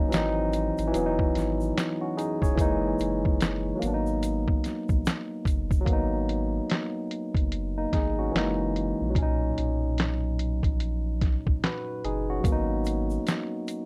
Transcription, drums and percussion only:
0.12 snare loud
0.12 clap medium
0.12 closed hi-hat medium
0.12 shaker medium
0.53 closed hi-hat medium
0.53 shaker medium
0.78 closed hi-hat soft
0.78 shaker soft
0.94 closed hi-hat medium
0.94 shaker medium
1.19 kick medium
1.35 snare soft
1.35 closed hi-hat medium
1.35 shaker soft
1.61 shaker soft
1.78 snare loud
1.78 clap medium
1.78 closed hi-hat medium
1.78 shaker medium
2.19 closed hi-hat medium
2.19 shaker soft
2.42 kick medium
2.42 shaker medium
2.58 kick loud
2.58 closed hi-hat medium
2.58 shaker medium
2.99 closed hi-hat medium
2.99 shaker soft
3.25 kick medium
3.41 snare loud
3.41 clap medium
3.41 closed hi-hat medium
3.41 shaker medium
3.82 closed hi-hat medium
3.82 shaker soft
4.07 shaker soft
4.23 closed hi-hat medium
4.23 shaker medium
4.48 kick medium
4.64 snare soft
4.64 closed hi-hat medium
4.64 shaker soft
4.89 kick medium
4.89 shaker soft
5.06 snare loud
5.06 clap medium
5.06 closed hi-hat medium
5.06 shaker medium
5.45 kick medium
5.45 closed hi-hat medium
5.45 shaker soft
5.71 kick medium
5.71 shaker medium
5.86 kick loud
5.86 closed hi-hat medium
6.29 closed hi-hat medium
6.70 snare loud
6.70 clap medium
6.70 closed hi-hat medium
7.11 closed hi-hat medium
7.35 kick medium
7.35 closed hi-hat soft
7.52 closed hi-hat medium
7.93 kick medium
7.93 snare soft
7.93 closed hi-hat medium
8.36 snare loud
8.36 clap medium
8.36 closed hi-hat medium
8.76 closed hi-hat medium
9.15 kick loud
9.15 closed hi-hat medium
9.58 closed hi-hat medium
9.98 snare loud
9.98 clap medium
9.98 closed hi-hat medium
10.39 closed hi-hat medium
10.63 kick medium
10.63 closed hi-hat soft
10.80 closed hi-hat medium
11.21 kick medium
11.21 snare soft
11.21 closed hi-hat medium
11.47 kick medium
11.64 snare loud
11.64 clap medium
11.64 closed hi-hat medium
12.05 closed hi-hat medium
12.44 kick loud
12.44 closed hi-hat medium
12.44 shaker medium
12.85 closed hi-hat medium
12.85 shaker medium
13.10 shaker soft
13.27 snare loud
13.27 clap medium
13.27 closed hi-hat medium
13.27 shaker medium
13.68 closed hi-hat medium
13.68 shaker soft

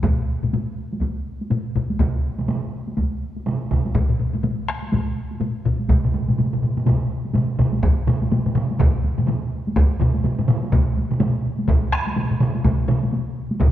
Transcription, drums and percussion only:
0.03 taiko medium
0.03 taiko low-mid medium
0.03 taiko high medium
0.43 taiko low-mid medium
0.43 taiko high soft
0.53 taiko low-mid medium
0.53 taiko high medium
0.93 taiko high soft
1.01 taiko medium
1.01 taiko high medium
1.41 taiko high soft
1.51 taiko low-mid medium
1.51 taiko high medium
1.76 taiko medium
1.76 taiko low-mid medium
1.90 taiko high soft
1.99 taiko medium
1.99 taiko mid medium
1.99 taiko high medium
2.38 taiko mid medium
2.38 taiko high soft
2.48 taiko mid medium
2.48 taiko high medium
2.87 taiko high soft
2.97 taiko medium
2.97 taiko high medium
3.36 taiko high soft
3.46 taiko mid medium
3.46 taiko high medium
3.71 taiko medium
3.71 taiko mid medium
3.85 taiko high soft
3.95 taiko loud
3.95 taiko low-mid medium
3.95 taiko high medium
4.09 taiko low-mid medium
4.19 taiko low-mid medium
4.33 taiko low-mid medium
4.33 taiko high soft
4.43 taiko low-mid medium
4.43 taiko high medium
4.68 taiko rim medium
4.82 taiko high soft
4.92 taiko medium
4.92 taiko low-mid medium
4.92 taiko high medium
5.31 taiko high soft
5.41 taiko low-mid medium
5.41 taiko high medium
5.66 taiko medium
5.66 taiko low-mid medium
5.79 taiko high soft
5.89 taiko medium
5.89 taiko low-mid medium
5.89 taiko mid medium
5.89 taiko high soft
6.04 taiko low-mid medium
6.04 taiko mid medium
6.14 taiko low-mid medium
6.14 taiko mid medium
6.14 taiko high soft
6.28 taiko low-mid medium
6.28 taiko mid medium
6.28 taiko high soft
6.38 taiko low-mid medium
6.38 taiko mid medium
6.38 taiko high soft
6.53 taiko low-mid medium
6.53 taiko mid medium
6.63 taiko low-mid medium
6.63 taiko mid medium
6.77 taiko low-mid medium
6.77 taiko mid medium
6.77 taiko high soft
6.86 taiko medium
6.86 taiko low-mid medium
6.86 taiko mid medium
6.86 taiko high medium
7.25 taiko high soft
7.35 taiko low-mid medium
7.35 taiko mid medium
7.35 taiko high medium
7.59 taiko medium
7.59 taiko low-mid medium
7.59 taiko mid medium
7.73 taiko high medium
7.83 taiko loud
7.83 taiko high medium
8.07 taiko low-mid loud
8.07 taiko mid medium
8.22 taiko high soft
8.31 taiko low-mid medium
8.31 taiko mid medium
8.31 taiko high medium
8.46 taiko low-mid medium
8.46 taiko mid medium
8.55 taiko low-mid medium
8.55 taiko mid medium
8.71 taiko high soft
8.79 taiko loud
8.79 taiko low-mid medium
8.79 taiko mid medium
8.79 taiko high medium
9.04 taiko high soft
9.18 taiko low-mid medium
9.18 taiko mid medium
9.18 taiko high soft
9.27 taiko low-mid medium
9.27 taiko mid medium
9.27 taiko high medium
9.67 taiko high medium
9.76 taiko loud
9.76 taiko high medium
10.00 taiko low-mid loud
10.00 taiko mid medium
10.15 taiko high soft
10.24 taiko low-mid medium
10.24 taiko mid medium
10.24 taiko high medium
10.39 taiko low-mid medium
10.39 taiko mid medium
10.48 taiko low-mid medium
10.48 taiko mid medium
10.63 taiko high soft
10.72 taiko medium
10.72 taiko low-mid medium
10.72 taiko mid medium
10.72 taiko high medium
10.97 taiko high soft
11.11 taiko low-mid medium
11.11 taiko mid medium
11.11 taiko high soft
11.20 taiko low-mid medium
11.20 taiko mid medium
11.20 taiko high medium
11.59 taiko high soft
11.68 taiko medium
11.68 taiko low-mid loud
11.68 taiko mid medium
11.68 taiko high medium
11.93 taiko rim medium
12.07 taiko high soft
12.16 taiko low-mid medium
12.16 taiko mid medium
12.16 taiko high medium
12.31 taiko low-mid medium
12.31 taiko mid medium
12.40 taiko low-mid medium
12.40 taiko mid loud
12.55 taiko high soft
12.64 taiko medium
12.64 taiko low-mid medium
12.64 taiko mid medium
12.64 taiko high medium
12.88 taiko low-mid loud
12.88 taiko mid loud
12.88 taiko high soft
13.03 taiko high soft
13.12 taiko high medium
13.51 taiko high medium
13.60 taiko medium
13.60 taiko low-mid loud
13.60 taiko mid medium
13.60 taiko high medium

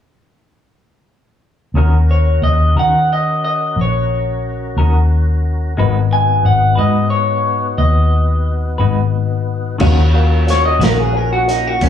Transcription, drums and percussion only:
9.80 kick medium
9.80 crash medium
10.48 snare soft
10.48 closed hi-hat soft
10.81 snare loud
10.81 closed hi-hat medium
11.49 closed hi-hat medium
11.81 kick medium
11.81 closed hi-hat medium

